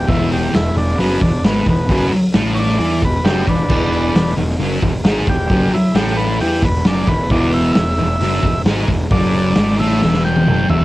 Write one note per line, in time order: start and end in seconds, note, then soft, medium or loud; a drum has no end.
0.08 0.51 E1 loud
0.08 0.53 E2 medium
0.08 0.53 E3 loud
0.08 0.30 E4 loud
0.08 kick loud
0.08 open hi-hat medium
0.32 0.54 G4 medium
0.32 open hi-hat medium
0.53 0.74 E1 medium
0.53 0.72 E2 medium
0.53 0.76 E4 medium
0.53 snare loud
0.53 open hi-hat medium
0.74 0.96 E1 medium
0.74 0.94 E2 medium
0.74 0.99 D4 loud
0.74 open hi-hat medium
0.89 snare soft
0.98 1.19 F#1 medium
0.98 1.20 F#2 loud
0.98 1.21 F#3 medium
0.98 1.20 B3 loud
0.98 open hi-hat medium
1.21 1.42 E1 medium
1.21 1.40 E2 medium
1.21 1.44 D4 medium
1.21 kick medium
1.21 open hi-hat medium
1.44 1.65 G#1 medium
1.44 1.66 G#2 medium
1.44 1.67 G#3 medium
1.44 1.67 B3 loud
1.44 snare loud
1.44 open hi-hat medium
1.66 1.87 E1 medium
1.66 1.85 E2 medium
1.66 2.12 B3 medium
1.66 kick medium
1.66 open hi-hat medium
1.89 2.10 F#1 loud
1.89 2.11 F#2 medium
1.89 2.12 F#3 loud
1.89 kick loud
1.89 open hi-hat medium
2.11 muted fingered electric bass stroke soft
2.11 muted distorted electric guitar stroke medium
2.11 open hi-hat medium
2.34 2.76 A1 loud
2.34 2.78 A2 loud
2.34 2.79 A3 loud
2.34 snare loud
2.34 open hi-hat medium
2.55 2.57 C#5 medium
2.55 open hi-hat medium
2.59 3.02 D5 loud
2.69 snare soft
2.79 3.00 E2 medium
2.79 3.01 E3 medium
2.79 3.02 E4 loud
2.79 open hi-hat medium
3.02 3.23 E1 medium
3.02 3.21 E2 medium
3.02 3.25 B4 loud
3.02 kick medium
3.02 open hi-hat medium
3.24 3.45 F#1 loud
3.24 3.46 F#2 medium
3.24 3.47 F#3 medium
3.24 3.47 G4 loud
3.24 snare loud
3.24 open hi-hat medium
3.47 3.68 E1 medium
3.47 3.65 E2 medium
3.47 4.34 D4 medium
3.47 4.36 B4 loud
3.47 kick medium
3.47 open hi-hat medium
3.69 4.12 E1 medium
3.69 4.14 E2 medium
3.69 4.14 E3 loud
3.69 kick loud
3.69 crash loud
3.93 open hi-hat medium
4.14 4.35 E1 medium
4.14 4.33 E2 medium
4.14 snare loud
4.14 open hi-hat medium
4.37 4.58 E1 medium
4.37 4.55 E2 medium
4.37 open hi-hat medium
4.50 snare soft
4.59 4.81 F#1 medium
4.59 4.82 F#2 medium
4.59 4.82 F#3 loud
4.59 open hi-hat medium
4.82 5.03 E1 medium
4.82 5.01 E2 medium
4.82 kick medium
4.82 open hi-hat medium
5.04 5.25 G#1 loud
5.04 5.27 G#2 medium
5.04 5.28 G#3 loud
5.04 snare loud
5.04 open hi-hat medium
5.26 5.48 E1 medium
5.26 5.46 E2 medium
5.26 5.72 G4 loud
5.26 kick medium
5.26 open hi-hat medium
5.49 5.71 F#1 loud
5.49 5.72 F#2 medium
5.49 5.72 F#3 medium
5.49 kick loud
5.49 open hi-hat medium
5.73 5.95 E4 medium
5.73 muted distorted electric guitar stroke medium
5.73 muted fingered electric bass stroke soft
5.73 open hi-hat medium
5.94 6.37 A1 medium
5.94 6.40 A2 loud
5.94 6.40 A3 loud
5.94 6.17 G4 medium
5.94 snare loud
5.94 open hi-hat loud
6.17 6.39 B4 loud
6.17 open hi-hat medium
6.40 6.61 E2 medium
6.40 6.63 E3 medium
6.40 6.63 E4 loud
6.40 6.63 G4 loud
6.40 open hi-hat medium
6.62 6.84 E1 medium
6.62 6.81 E2 medium
6.62 6.86 B4 medium
6.62 kick medium
6.62 open hi-hat medium
6.85 7.07 F#1 medium
6.85 7.07 F#2 medium
6.85 7.08 F#3 loud
6.85 7.09 D5 loud
6.85 snare loud
6.85 open hi-hat medium
7.07 7.29 E1 medium
7.07 7.26 E2 medium
7.07 7.30 B4 loud
7.07 kick medium
7.07 open hi-hat medium
7.30 7.73 E1 loud
7.30 7.75 E2 medium
7.30 7.76 E3 loud
7.30 7.53 D5 loud
7.30 kick loud
7.30 open hi-hat medium
7.53 7.72 E5 loud
7.53 open hi-hat medium
7.73 7.97 E1 medium
7.73 7.94 E2 medium
7.73 8.62 E5 loud
7.73 snare loud
7.73 open hi-hat medium
7.97 8.19 E1 medium
7.97 8.17 E2 medium
7.97 open hi-hat medium
8.20 8.42 F#1 medium
8.20 8.43 F#2 loud
8.20 8.44 F#3 loud
8.20 open hi-hat medium
8.43 8.64 E1 medium
8.43 8.62 E2 medium
8.43 kick medium
8.43 open hi-hat medium
8.65 8.87 G#1 loud
8.65 8.88 G#2 medium
8.65 8.89 G#3 loud
8.65 snare loud
8.65 open hi-hat medium
8.88 9.10 E1 medium
8.88 9.07 E2 medium
8.88 kick medium
8.88 open hi-hat soft
9.11 9.53 F#1 loud
9.11 9.57 F#2 medium
9.11 9.57 F#3 medium
9.11 9.77 D5 loud
9.11 kick loud
9.11 open hi-hat medium
9.33 open hi-hat medium
9.55 9.77 G#1 medium
9.55 9.79 G#2 loud
9.55 9.79 G#3 loud
9.55 snare loud
9.55 open hi-hat medium
9.79 10.00 A1 loud
9.79 10.02 A2 loud
9.79 10.02 A3 loud
9.79 10.23 E5 loud
9.79 open hi-hat medium
9.91 snare soft
10.02 10.44 E1 loud
10.02 10.47 E2 loud
10.02 10.47 E3 loud
10.02 snare medium
10.14 snare medium
10.25 10.68 G5 loud
10.36 high tom medium
10.47 10.68 F#1 loud
10.47 10.69 F#2 loud
10.47 10.69 F#3 loud
10.47 mid tom medium
10.69 10.85 E1 loud
10.69 10.85 E2 medium
10.69 10.85 E3 medium
10.69 10.85 E5 loud
10.69 floor tom loud
10.81 floor tom medium